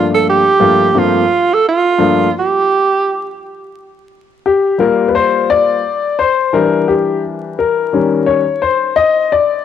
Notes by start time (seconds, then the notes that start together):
Already playing: G2 F3 A3 A#3 D4
0.15 A4
0.29 G4
0.60 G2 F3 A3 A#3 F4
0.94 G2 F3 A3 A#3 C4 F4
1.53 A4
1.69 F4
1.98 G2 F3 A3 A#3 D4
2.39 G4
4.46 G4
4.78 G3 A#3 F4 A#4
5.08 B4
5.15 C5
5.50 D5
6.19 C5
6.53 E3 G3 D4 A#4
6.88 G4
7.59 A#4
7.93 D#3 G3 C#4
8.26 C#5
8.62 C5
8.96 D#5
9.32 D5